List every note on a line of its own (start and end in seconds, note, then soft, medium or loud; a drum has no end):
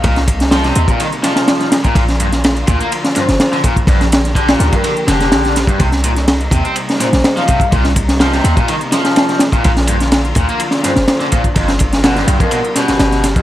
0.00 0.16 A#2 loud
0.00 1.92 C3 medium
0.00 1.92 G3 medium
0.00 5.76 A#3 medium
0.00 1.92 D#4 medium
0.00 closed hi-hat soft
0.04 0.72 C2 loud
0.04 kick loud
0.04 ride medium
0.16 snare soft
0.16 closed hi-hat soft
0.28 kick medium
0.28 closed hi-hat medium
0.28 ride medium
0.40 snare soft
0.40 closed hi-hat soft
0.51 0.63 F3 medium
0.51 snare loud
0.51 closed hi-hat soft
0.51 ride medium
0.64 0.88 C3 medium
0.64 snare soft
0.64 closed hi-hat soft
0.75 0.86 D#2 loud
0.75 closed hi-hat medium
0.75 ride medium
0.88 1.00 A#2 medium
0.88 kick medium
0.88 closed hi-hat soft
1.00 1.06 D#3 loud
1.00 closed hi-hat soft
1.00 ride medium
1.12 closed hi-hat soft
1.23 1.71 F3 medium
1.23 snare soft
1.23 closed hi-hat medium
1.23 ride medium
1.36 snare medium
1.36 closed hi-hat soft
1.48 snare loud
1.48 closed hi-hat soft
1.48 ride medium
1.61 snare soft
1.61 closed hi-hat soft
1.72 snare loud
1.72 closed hi-hat medium
1.72 ride medium
1.84 1.95 A#2 medium
1.84 kick loud
1.84 closed hi-hat soft
1.95 2.64 A#1 loud
1.95 2.02 A#2 loud
1.95 5.76 D3 medium
1.95 5.76 F3 medium
1.95 3.86 F4 medium
1.95 kick loud
1.95 closed hi-hat soft
1.95 ride medium
2.09 snare soft
2.09 closed hi-hat soft
2.20 2.26 G2 medium
2.20 closed hi-hat medium
2.20 ride medium
2.33 snare soft
2.33 closed hi-hat soft
2.44 snare loud
2.44 closed hi-hat soft
2.44 ride medium
2.57 closed hi-hat soft
2.67 2.78 D2 loud
2.67 2.78 A#2 medium
2.67 kick medium
2.67 closed hi-hat medium
2.67 ride medium
2.81 2.90 A#3 medium
2.81 closed hi-hat soft
2.92 closed hi-hat soft
2.92 ride medium
3.04 snare soft
3.04 closed hi-hat soft
3.15 3.22 G2 medium
3.15 3.24 C5 medium
3.15 snare soft
3.15 closed hi-hat medium
3.15 ride medium
3.28 3.38 G1 loud
3.28 3.36 C5 medium
3.28 snare medium
3.28 closed hi-hat soft
3.40 snare loud
3.40 closed hi-hat soft
3.40 ride medium
3.52 3.58 D3 medium
3.52 snare soft
3.52 closed hi-hat soft
3.64 3.74 A#2 medium
3.64 kick medium
3.64 closed hi-hat medium
3.64 ride medium
3.77 kick medium
3.77 closed hi-hat soft
3.87 4.56 A#1 loud
3.87 4.00 G2 loud
3.87 5.78 G4 medium
3.87 kick loud
3.87 closed hi-hat soft
3.87 ride medium
4.01 snare soft
4.01 closed hi-hat soft
4.12 snare loud
4.12 closed hi-hat medium
4.12 ride medium
4.25 snare soft
4.25 closed hi-hat soft
4.35 4.47 D3 medium
4.35 kick medium
4.35 closed hi-hat soft
4.35 ride medium
4.48 4.71 A#2 medium
4.48 snare medium
4.48 closed hi-hat soft
4.48 ride medium
4.60 4.70 D2 loud
4.60 snare soft
4.60 closed hi-hat medium
4.72 4.84 G2 medium
4.72 4.80 A#4 medium
4.72 kick medium
4.72 closed hi-hat soft
4.72 ride medium
4.84 4.90 D3 medium
4.84 4.92 A#4 medium
4.84 closed hi-hat soft
4.84 ride medium
4.97 closed hi-hat soft
5.07 5.33 F1 medium
5.07 5.55 D3 medium
5.07 5.76 G4 medium
5.07 snare medium
5.07 closed hi-hat medium
5.07 ride medium
5.21 snare soft
5.21 closed hi-hat soft
5.32 5.76 A#1 medium
5.32 snare loud
5.32 closed hi-hat soft
5.32 ride medium
5.45 snare soft
5.45 closed hi-hat soft
5.56 snare medium
5.56 closed hi-hat medium
5.56 ride medium
5.67 5.79 G2 medium
5.67 kick medium
5.67 closed hi-hat soft
5.80 6.48 C2 loud
5.80 5.86 C3 loud
5.80 9.60 C3 medium
5.80 9.60 G3 medium
5.80 11.52 A#3 medium
5.80 9.60 D#4 medium
5.80 kick loud
5.80 closed hi-hat soft
5.80 ride medium
5.92 snare soft
5.92 closed hi-hat soft
6.04 6.10 A#2 medium
6.04 closed hi-hat medium
6.04 ride medium
6.16 snare soft
6.16 closed hi-hat soft
6.28 snare loud
6.28 closed hi-hat soft
6.28 ride medium
6.41 closed hi-hat soft
6.51 6.62 D#2 loud
6.51 6.62 C3 medium
6.51 kick loud
6.51 closed hi-hat medium
6.51 ride medium
6.65 6.74 C4 medium
6.65 closed hi-hat soft
6.76 closed hi-hat soft
6.76 ride medium
6.89 snare soft
6.89 closed hi-hat soft
7.00 7.06 A#2 medium
7.00 7.09 C5 medium
7.00 snare soft
7.00 closed hi-hat medium
7.00 ride medium
7.13 7.22 A#1 loud
7.13 7.20 C5 medium
7.13 snare medium
7.13 closed hi-hat soft
7.24 snare loud
7.24 closed hi-hat soft
7.24 ride medium
7.37 7.42 F3 loud
7.37 7.44 F5 medium
7.37 snare soft
7.37 closed hi-hat soft
7.48 7.58 C3 medium
7.48 7.56 F5 medium
7.48 kick medium
7.48 closed hi-hat medium
7.48 ride medium
7.60 kick loud
7.60 closed hi-hat soft
7.72 8.40 C2 loud
7.72 7.84 A#2 loud
7.72 kick loud
7.72 closed hi-hat soft
7.72 ride medium
7.85 snare soft
7.85 closed hi-hat soft
7.96 kick medium
7.96 closed hi-hat medium
7.96 ride medium
8.09 snare medium
8.09 closed hi-hat soft
8.20 8.32 F3 medium
8.20 snare loud
8.20 closed hi-hat soft
8.20 ride medium
8.33 8.56 C3 medium
8.33 snare soft
8.33 closed hi-hat soft
8.44 8.54 D#2 loud
8.44 closed hi-hat medium
8.44 ride medium
8.57 8.68 A#2 medium
8.57 kick medium
8.57 closed hi-hat soft
8.68 8.74 D#3 loud
8.68 closed hi-hat soft
8.68 ride medium
8.81 closed hi-hat soft
8.92 9.39 F3 medium
8.92 snare medium
8.92 closed hi-hat medium
8.92 ride medium
9.05 snare soft
9.05 closed hi-hat soft
9.16 snare loud
9.16 closed hi-hat soft
9.16 ride medium
9.29 snare soft
9.29 closed hi-hat soft
9.39 snare loud
9.39 closed hi-hat medium
9.39 ride medium
9.52 9.63 A#2 medium
9.52 kick medium
9.52 closed hi-hat soft
9.64 10.33 A#1 loud
9.64 9.70 A#2 loud
9.64 13.42 D3 medium
9.64 11.54 F3 medium
9.64 11.54 F4 medium
9.64 kick loud
9.64 closed hi-hat soft
9.64 ride medium
9.77 snare soft
9.77 closed hi-hat soft
9.87 9.94 G2 medium
9.87 closed hi-hat medium
9.87 ride medium
10.00 snare soft
10.00 closed hi-hat soft
10.12 snare loud
10.12 closed hi-hat soft
10.12 ride medium
10.25 closed hi-hat soft
10.35 10.46 D2 loud
10.35 10.46 A#2 medium
10.35 kick medium
10.35 closed hi-hat medium
10.35 ride medium
10.49 10.58 A#3 medium
10.49 closed hi-hat soft
10.60 closed hi-hat soft
10.60 ride medium
10.71 snare soft
10.71 closed hi-hat soft
10.83 10.90 G2 medium
10.83 10.92 C5 medium
10.83 snare soft
10.83 closed hi-hat medium
10.83 ride medium
10.96 11.06 G1 loud
10.96 11.04 C5 medium
10.96 snare medium
10.96 closed hi-hat soft
11.08 snare loud
11.08 closed hi-hat soft
11.08 ride medium
11.20 11.26 D3 loud
11.20 snare soft
11.20 closed hi-hat soft
11.32 11.42 A#2 medium
11.32 kick loud
11.32 closed hi-hat medium
11.32 ride medium
11.44 kick medium
11.44 closed hi-hat soft
11.56 12.24 G1 loud
11.56 11.68 F2 loud
11.56 13.42 G3 medium
11.56 13.42 B3 medium
11.56 13.42 F4 medium
11.56 kick loud
11.56 closed hi-hat soft
11.56 ride medium
11.68 snare soft
11.68 closed hi-hat soft
11.79 kick medium
11.79 closed hi-hat medium
11.79 ride medium
11.93 snare medium
11.93 closed hi-hat soft
12.04 12.15 B2 medium
12.04 snare loud
12.04 closed hi-hat soft
12.04 ride medium
12.16 12.39 G2 medium
12.16 snare medium
12.16 closed hi-hat soft
12.28 12.38 B1 loud
12.28 closed hi-hat medium
12.28 ride medium
12.40 12.51 F2 medium
12.40 12.48 A#4 medium
12.40 kick medium
12.40 closed hi-hat soft
12.51 12.58 B2 loud
12.51 12.60 A#4 medium
12.51 closed hi-hat soft
12.51 ride medium
12.65 closed hi-hat soft
12.76 13.23 B2 medium
12.76 13.42 G4 medium
12.76 snare soft
12.76 closed hi-hat medium
12.76 ride medium
12.88 12.98 G1 soft
12.88 snare soft
12.88 closed hi-hat soft
12.99 13.42 G1 loud
12.99 snare loud
12.99 closed hi-hat soft
12.99 ride medium
13.12 snare soft
13.12 closed hi-hat soft
13.24 snare soft
13.24 closed hi-hat medium
13.24 ride medium
13.36 13.42 F2 medium
13.36 kick medium
13.36 closed hi-hat soft